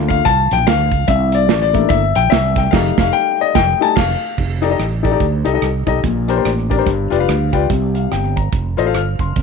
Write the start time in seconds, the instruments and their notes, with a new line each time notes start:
Already playing: fretless electric bass D2, upright piano A3 A#3 F4
0.08 upright piano F5, kick, closed hi-hat
0.25 fretless electric bass C2, upright piano A5, kick, closed hi-hat
0.51 fretless electric bass A#1, upright piano G5, closed hi-hat
0.67 fretless electric bass D2, upright piano F5, snare, closed hi-hat
0.91 fretless electric bass C#2, kick, closed hi-hat
1.08 fretless electric bass C2, upright piano E5, kick, closed hi-hat
1.32 upright piano D5, closed hi-hat
1.49 fretless electric bass A1, snare, closed hi-hat
1.61 upright piano D5, snare
1.73 upright piano A3 A#3 D4 E4, kick, closed hi-hat
1.89 fretless electric bass G1, upright piano E5, kick, closed hi-hat
2.15 fretless electric bass A#1, upright piano G5, closed hi-hat
2.30 fretless electric bass C2, upright piano E5, snare, closed hi-hat
2.56 upright piano G5, kick, snare, closed hi-hat
2.71 fretless electric bass F1, upright piano G3 A3 D#4 F5, kick, snare, crash
2.98 fretless electric bass F1, upright piano F5, kick, snare
3.13 upright piano G5
3.41 upright piano D5 D#5
3.55 fretless electric bass F1, upright piano G5, kick, snare
3.80 upright piano G3 A3 D#4 G#5 A5
3.96 fretless electric bass F1, upright piano F5, kick, snare, crash
4.38 fretless electric bass F1, kick, crash
4.62 upright piano D#4 G4 A4 D5, closed hi-hat
4.70 upright piano D#4 G4 A4 D#5
4.79 fretless electric bass A1, cross-stick, closed hi-hat
4.92 cross-stick
5.03 upright piano D#4 G4 A4 D5, kick, closed hi-hat
5.11 upright piano D#4 G4 A4 D5
5.20 fretless electric bass D2, kick, closed hi-hat
5.45 fretless electric bass C2, upright piano D#4 G4 A4 D#5, closed hi-hat
5.53 upright piano D#4 G4 A4 D#5
5.61 fretless electric bass C2, cross-stick, closed hi-hat
5.87 fretless electric bass B1, upright piano D#4 G4 A4 D#5, kick, cross-stick, closed hi-hat
6.04 fretless electric bass A#1, upright piano A#2, kick, closed hi-hat
6.28 upright piano D4 G4 A#4 C5, closed hi-hat
6.36 upright piano D4 G4 A#4 C5
6.45 fretless electric bass A1, cross-stick, closed hi-hat
6.58 cross-stick
6.70 upright piano D4 G4 A#4 D5, kick, closed hi-hat
6.77 upright piano D4 G4 A#4 C5
6.85 fretless electric bass G1, upright piano G2, kick, closed hi-hat
7.10 fretless electric bass F1, upright piano F4 G4 B4 D5, closed hi-hat
7.19 upright piano F4 G4 B4 F5
7.28 fretless electric bass D2, upright piano F5, cross-stick, closed hi-hat
7.53 fretless electric bass C#2, upright piano F4 G4 B4 D5 G5, kick, cross-stick, closed hi-hat
7.69 fretless electric bass C2, upright piano C3, kick, closed hi-hat
7.95 upright piano F5, closed hi-hat
8.11 fretless electric bass G1, upright piano G5, cross-stick, closed hi-hat
8.24 cross-stick
8.36 upright piano A#5, kick, closed hi-hat
8.52 fretless electric bass F1, kick, closed hi-hat
8.77 fretless electric bass A1, upright piano F4 A4 C5 D#5, closed hi-hat
8.85 upright piano F4 A4 C5 F5
8.94 fretless electric bass G1, upright piano F6, cross-stick, closed hi-hat
9.19 fretless electric bass F#1, upright piano C6, kick, cross-stick, closed hi-hat
9.36 fretless electric bass F1, kick, closed hi-hat